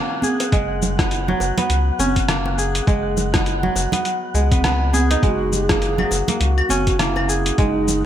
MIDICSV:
0, 0, Header, 1, 6, 480
1, 0, Start_track
1, 0, Tempo, 588235
1, 428, Time_signature, 4, 2, 24, 8
1, 6571, End_track
2, 0, Start_track
2, 0, Title_t, "Synth texture"
2, 0, Program_c, 0, 99
2, 0, Note_on_c, 0, 78, 80
2, 6571, Note_off_c, 0, 78, 0
2, 6571, End_track
3, 0, Start_track
3, 0, Title_t, "Ney"
3, 0, Program_c, 1, 77
3, 4275, Note_on_c, 1, 66, 93
3, 4514, Note_on_c, 1, 67, 104
3, 4526, Note_off_c, 1, 66, 0
3, 4628, Note_off_c, 1, 67, 0
3, 4628, Note_on_c, 1, 68, 104
3, 5233, Note_on_c, 1, 66, 99
3, 5245, Note_off_c, 1, 68, 0
3, 5710, Note_on_c, 1, 64, 90
3, 5722, Note_off_c, 1, 66, 0
3, 6189, Note_on_c, 1, 63, 88
3, 6201, Note_off_c, 1, 64, 0
3, 6571, Note_off_c, 1, 63, 0
3, 6571, End_track
4, 0, Start_track
4, 0, Title_t, "Kora"
4, 0, Program_c, 2, 46
4, 0, Note_on_c, 2, 54, 70
4, 0, Note_on_c, 2, 56, 92
4, 0, Note_on_c, 2, 58, 80
4, 0, Note_on_c, 2, 61, 97
4, 189, Note_on_c, 2, 68, 73
4, 415, Note_off_c, 2, 56, 0
4, 428, Note_on_c, 2, 56, 99
4, 468, Note_off_c, 2, 54, 0
4, 806, Note_on_c, 2, 59, 69
4, 855, Note_off_c, 2, 58, 0
4, 1047, Note_on_c, 2, 54, 75
4, 1126, Note_off_c, 2, 61, 0
4, 1283, Note_off_c, 2, 59, 0
4, 1286, Note_on_c, 2, 59, 76
4, 1303, Note_off_c, 2, 68, 0
4, 1626, Note_on_c, 2, 61, 96
4, 1867, Note_on_c, 2, 58, 79
4, 1916, Note_off_c, 2, 59, 0
4, 2106, Note_on_c, 2, 68, 68
4, 2335, Note_off_c, 2, 56, 0
4, 2344, Note_on_c, 2, 56, 94
4, 2725, Note_on_c, 2, 59, 70
4, 2774, Note_off_c, 2, 58, 0
4, 2954, Note_off_c, 2, 54, 0
4, 2963, Note_on_c, 2, 54, 70
4, 3045, Note_off_c, 2, 61, 0
4, 3201, Note_off_c, 2, 59, 0
4, 3204, Note_on_c, 2, 59, 70
4, 3220, Note_off_c, 2, 68, 0
4, 3536, Note_off_c, 2, 56, 0
4, 3545, Note_on_c, 2, 56, 69
4, 3683, Note_off_c, 2, 59, 0
4, 3687, Note_on_c, 2, 59, 77
4, 3783, Note_off_c, 2, 59, 0
4, 3786, Note_on_c, 2, 59, 94
4, 4027, Note_on_c, 2, 68, 96
4, 4167, Note_on_c, 2, 63, 94
4, 4258, Note_off_c, 2, 56, 0
4, 4268, Note_on_c, 2, 56, 92
4, 4308, Note_off_c, 2, 54, 0
4, 4648, Note_on_c, 2, 58, 76
4, 4697, Note_off_c, 2, 59, 0
4, 4887, Note_on_c, 2, 54, 68
4, 5123, Note_off_c, 2, 58, 0
4, 5126, Note_on_c, 2, 58, 70
4, 5141, Note_off_c, 2, 68, 0
4, 5467, Note_on_c, 2, 61, 100
4, 5491, Note_off_c, 2, 63, 0
4, 5704, Note_off_c, 2, 58, 0
4, 5708, Note_on_c, 2, 58, 82
4, 5947, Note_on_c, 2, 68, 71
4, 6177, Note_off_c, 2, 56, 0
4, 6189, Note_on_c, 2, 56, 98
4, 6564, Note_off_c, 2, 58, 0
4, 6571, Note_off_c, 2, 54, 0
4, 6571, Note_off_c, 2, 56, 0
4, 6571, Note_off_c, 2, 61, 0
4, 6571, Note_off_c, 2, 68, 0
4, 6571, End_track
5, 0, Start_track
5, 0, Title_t, "Analog synth bass"
5, 0, Program_c, 3, 38
5, 426, Note_on_c, 3, 30, 87
5, 1092, Note_off_c, 3, 30, 0
5, 1144, Note_on_c, 3, 30, 84
5, 1238, Note_off_c, 3, 30, 0
5, 1384, Note_on_c, 3, 37, 78
5, 1557, Note_off_c, 3, 37, 0
5, 1623, Note_on_c, 3, 30, 86
5, 2291, Note_off_c, 3, 30, 0
5, 2344, Note_on_c, 3, 30, 89
5, 3011, Note_off_c, 3, 30, 0
5, 3063, Note_on_c, 3, 30, 84
5, 3158, Note_off_c, 3, 30, 0
5, 3544, Note_on_c, 3, 37, 87
5, 4211, Note_off_c, 3, 37, 0
5, 4265, Note_on_c, 3, 30, 92
5, 4931, Note_off_c, 3, 30, 0
5, 4987, Note_on_c, 3, 30, 88
5, 5079, Note_off_c, 3, 30, 0
5, 5226, Note_on_c, 3, 37, 83
5, 5398, Note_off_c, 3, 37, 0
5, 5466, Note_on_c, 3, 30, 89
5, 6132, Note_off_c, 3, 30, 0
5, 6186, Note_on_c, 3, 30, 86
5, 6571, Note_off_c, 3, 30, 0
5, 6571, End_track
6, 0, Start_track
6, 0, Title_t, "Drums"
6, 181, Note_on_c, 9, 63, 73
6, 191, Note_on_c, 9, 82, 76
6, 262, Note_off_c, 9, 63, 0
6, 273, Note_off_c, 9, 82, 0
6, 326, Note_on_c, 9, 42, 51
6, 328, Note_on_c, 9, 60, 65
6, 329, Note_on_c, 9, 82, 42
6, 408, Note_off_c, 9, 42, 0
6, 409, Note_off_c, 9, 60, 0
6, 411, Note_off_c, 9, 82, 0
6, 427, Note_on_c, 9, 36, 114
6, 428, Note_on_c, 9, 42, 39
6, 431, Note_on_c, 9, 82, 33
6, 508, Note_off_c, 9, 36, 0
6, 509, Note_off_c, 9, 42, 0
6, 512, Note_off_c, 9, 82, 0
6, 670, Note_on_c, 9, 82, 82
6, 673, Note_on_c, 9, 64, 88
6, 751, Note_off_c, 9, 82, 0
6, 755, Note_off_c, 9, 64, 0
6, 806, Note_on_c, 9, 36, 107
6, 807, Note_on_c, 9, 37, 74
6, 807, Note_on_c, 9, 42, 53
6, 810, Note_on_c, 9, 82, 49
6, 888, Note_off_c, 9, 36, 0
6, 889, Note_off_c, 9, 37, 0
6, 889, Note_off_c, 9, 42, 0
6, 892, Note_off_c, 9, 82, 0
6, 907, Note_on_c, 9, 42, 40
6, 910, Note_on_c, 9, 82, 35
6, 989, Note_off_c, 9, 42, 0
6, 992, Note_off_c, 9, 82, 0
6, 1047, Note_on_c, 9, 64, 97
6, 1129, Note_off_c, 9, 64, 0
6, 1144, Note_on_c, 9, 60, 54
6, 1150, Note_on_c, 9, 82, 79
6, 1226, Note_off_c, 9, 60, 0
6, 1232, Note_off_c, 9, 82, 0
6, 1285, Note_on_c, 9, 64, 85
6, 1286, Note_on_c, 9, 42, 53
6, 1289, Note_on_c, 9, 82, 43
6, 1367, Note_off_c, 9, 64, 0
6, 1368, Note_off_c, 9, 42, 0
6, 1371, Note_off_c, 9, 82, 0
6, 1385, Note_on_c, 9, 42, 39
6, 1388, Note_on_c, 9, 82, 34
6, 1467, Note_off_c, 9, 42, 0
6, 1470, Note_off_c, 9, 82, 0
6, 1628, Note_on_c, 9, 82, 83
6, 1629, Note_on_c, 9, 63, 73
6, 1710, Note_off_c, 9, 63, 0
6, 1710, Note_off_c, 9, 82, 0
6, 1762, Note_on_c, 9, 60, 52
6, 1764, Note_on_c, 9, 42, 52
6, 1765, Note_on_c, 9, 36, 56
6, 1767, Note_on_c, 9, 82, 41
6, 1844, Note_off_c, 9, 60, 0
6, 1846, Note_off_c, 9, 36, 0
6, 1846, Note_off_c, 9, 42, 0
6, 1849, Note_off_c, 9, 82, 0
6, 1865, Note_on_c, 9, 37, 72
6, 1865, Note_on_c, 9, 42, 40
6, 1868, Note_on_c, 9, 82, 33
6, 1946, Note_off_c, 9, 37, 0
6, 1946, Note_off_c, 9, 42, 0
6, 1949, Note_off_c, 9, 82, 0
6, 2002, Note_on_c, 9, 63, 36
6, 2004, Note_on_c, 9, 60, 55
6, 2083, Note_off_c, 9, 63, 0
6, 2086, Note_off_c, 9, 60, 0
6, 2109, Note_on_c, 9, 82, 79
6, 2190, Note_off_c, 9, 82, 0
6, 2244, Note_on_c, 9, 42, 47
6, 2247, Note_on_c, 9, 82, 43
6, 2326, Note_off_c, 9, 42, 0
6, 2329, Note_off_c, 9, 82, 0
6, 2345, Note_on_c, 9, 36, 118
6, 2346, Note_on_c, 9, 42, 39
6, 2349, Note_on_c, 9, 82, 30
6, 2426, Note_off_c, 9, 36, 0
6, 2427, Note_off_c, 9, 42, 0
6, 2430, Note_off_c, 9, 82, 0
6, 2587, Note_on_c, 9, 82, 79
6, 2590, Note_on_c, 9, 64, 80
6, 2669, Note_off_c, 9, 82, 0
6, 2671, Note_off_c, 9, 64, 0
6, 2724, Note_on_c, 9, 36, 102
6, 2724, Note_on_c, 9, 37, 80
6, 2724, Note_on_c, 9, 42, 53
6, 2727, Note_on_c, 9, 82, 46
6, 2805, Note_off_c, 9, 37, 0
6, 2805, Note_off_c, 9, 42, 0
6, 2806, Note_off_c, 9, 36, 0
6, 2808, Note_off_c, 9, 82, 0
6, 2825, Note_on_c, 9, 42, 39
6, 2828, Note_on_c, 9, 82, 32
6, 2907, Note_off_c, 9, 42, 0
6, 2910, Note_off_c, 9, 82, 0
6, 2964, Note_on_c, 9, 64, 90
6, 3045, Note_off_c, 9, 64, 0
6, 3065, Note_on_c, 9, 60, 49
6, 3069, Note_on_c, 9, 82, 78
6, 3147, Note_off_c, 9, 60, 0
6, 3151, Note_off_c, 9, 82, 0
6, 3200, Note_on_c, 9, 64, 89
6, 3206, Note_on_c, 9, 42, 50
6, 3209, Note_on_c, 9, 82, 44
6, 3282, Note_off_c, 9, 64, 0
6, 3288, Note_off_c, 9, 42, 0
6, 3291, Note_off_c, 9, 82, 0
6, 3306, Note_on_c, 9, 42, 40
6, 3309, Note_on_c, 9, 82, 30
6, 3387, Note_off_c, 9, 42, 0
6, 3390, Note_off_c, 9, 82, 0
6, 3548, Note_on_c, 9, 82, 79
6, 3630, Note_off_c, 9, 82, 0
6, 3684, Note_on_c, 9, 36, 104
6, 3685, Note_on_c, 9, 42, 50
6, 3688, Note_on_c, 9, 82, 41
6, 3690, Note_on_c, 9, 63, 64
6, 3766, Note_off_c, 9, 36, 0
6, 3767, Note_off_c, 9, 42, 0
6, 3770, Note_off_c, 9, 82, 0
6, 3772, Note_off_c, 9, 63, 0
6, 3787, Note_on_c, 9, 37, 74
6, 3787, Note_on_c, 9, 42, 39
6, 3790, Note_on_c, 9, 82, 31
6, 3868, Note_off_c, 9, 37, 0
6, 3868, Note_off_c, 9, 42, 0
6, 3871, Note_off_c, 9, 82, 0
6, 4026, Note_on_c, 9, 63, 77
6, 4030, Note_on_c, 9, 82, 72
6, 4108, Note_off_c, 9, 63, 0
6, 4111, Note_off_c, 9, 82, 0
6, 4167, Note_on_c, 9, 42, 48
6, 4169, Note_on_c, 9, 60, 55
6, 4170, Note_on_c, 9, 82, 41
6, 4249, Note_off_c, 9, 42, 0
6, 4250, Note_off_c, 9, 60, 0
6, 4251, Note_off_c, 9, 82, 0
6, 4265, Note_on_c, 9, 36, 114
6, 4267, Note_on_c, 9, 42, 40
6, 4270, Note_on_c, 9, 82, 30
6, 4347, Note_off_c, 9, 36, 0
6, 4349, Note_off_c, 9, 42, 0
6, 4352, Note_off_c, 9, 82, 0
6, 4509, Note_on_c, 9, 64, 65
6, 4510, Note_on_c, 9, 82, 71
6, 4590, Note_off_c, 9, 64, 0
6, 4591, Note_off_c, 9, 82, 0
6, 4645, Note_on_c, 9, 36, 101
6, 4646, Note_on_c, 9, 37, 74
6, 4646, Note_on_c, 9, 42, 53
6, 4649, Note_on_c, 9, 82, 44
6, 4727, Note_off_c, 9, 36, 0
6, 4727, Note_off_c, 9, 37, 0
6, 4727, Note_off_c, 9, 42, 0
6, 4730, Note_off_c, 9, 82, 0
6, 4747, Note_on_c, 9, 42, 39
6, 4750, Note_on_c, 9, 82, 31
6, 4829, Note_off_c, 9, 42, 0
6, 4832, Note_off_c, 9, 82, 0
6, 4883, Note_on_c, 9, 64, 82
6, 4886, Note_on_c, 9, 75, 58
6, 4964, Note_off_c, 9, 64, 0
6, 4968, Note_off_c, 9, 75, 0
6, 4986, Note_on_c, 9, 60, 51
6, 4990, Note_on_c, 9, 82, 79
6, 5067, Note_off_c, 9, 60, 0
6, 5072, Note_off_c, 9, 82, 0
6, 5124, Note_on_c, 9, 64, 85
6, 5127, Note_on_c, 9, 42, 50
6, 5130, Note_on_c, 9, 82, 42
6, 5206, Note_off_c, 9, 64, 0
6, 5209, Note_off_c, 9, 42, 0
6, 5212, Note_off_c, 9, 82, 0
6, 5227, Note_on_c, 9, 42, 39
6, 5230, Note_on_c, 9, 82, 31
6, 5309, Note_off_c, 9, 42, 0
6, 5312, Note_off_c, 9, 82, 0
6, 5367, Note_on_c, 9, 75, 77
6, 5449, Note_off_c, 9, 75, 0
6, 5461, Note_on_c, 9, 63, 58
6, 5469, Note_on_c, 9, 82, 77
6, 5542, Note_off_c, 9, 63, 0
6, 5551, Note_off_c, 9, 82, 0
6, 5606, Note_on_c, 9, 36, 58
6, 5606, Note_on_c, 9, 42, 50
6, 5608, Note_on_c, 9, 60, 46
6, 5609, Note_on_c, 9, 82, 42
6, 5687, Note_off_c, 9, 42, 0
6, 5688, Note_off_c, 9, 36, 0
6, 5690, Note_off_c, 9, 60, 0
6, 5690, Note_off_c, 9, 82, 0
6, 5707, Note_on_c, 9, 37, 66
6, 5707, Note_on_c, 9, 42, 41
6, 5710, Note_on_c, 9, 82, 34
6, 5789, Note_off_c, 9, 37, 0
6, 5789, Note_off_c, 9, 42, 0
6, 5792, Note_off_c, 9, 82, 0
6, 5842, Note_on_c, 9, 60, 55
6, 5846, Note_on_c, 9, 63, 28
6, 5846, Note_on_c, 9, 75, 58
6, 5923, Note_off_c, 9, 60, 0
6, 5927, Note_off_c, 9, 63, 0
6, 5928, Note_off_c, 9, 75, 0
6, 5950, Note_on_c, 9, 82, 72
6, 6032, Note_off_c, 9, 82, 0
6, 6087, Note_on_c, 9, 42, 49
6, 6090, Note_on_c, 9, 82, 39
6, 6168, Note_off_c, 9, 42, 0
6, 6171, Note_off_c, 9, 82, 0
6, 6186, Note_on_c, 9, 42, 43
6, 6187, Note_on_c, 9, 36, 103
6, 6189, Note_on_c, 9, 82, 30
6, 6268, Note_off_c, 9, 36, 0
6, 6268, Note_off_c, 9, 42, 0
6, 6271, Note_off_c, 9, 82, 0
6, 6430, Note_on_c, 9, 82, 78
6, 6431, Note_on_c, 9, 64, 73
6, 6511, Note_off_c, 9, 82, 0
6, 6512, Note_off_c, 9, 64, 0
6, 6571, End_track
0, 0, End_of_file